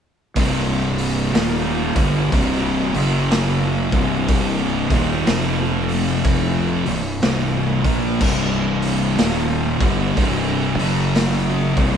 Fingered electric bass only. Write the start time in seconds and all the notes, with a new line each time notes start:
0.36 C1
1.34 D#1
1.96 G1
2.32 C1
2.94 F#1
3.92 C1
4.90 D#1
5.27 F1
6.87 C1
7.23 C1
7.84 A#1
8.21 C1
9.19 D#1
9.80 G1
10.17 C1
10.78 F#1
11.77 C1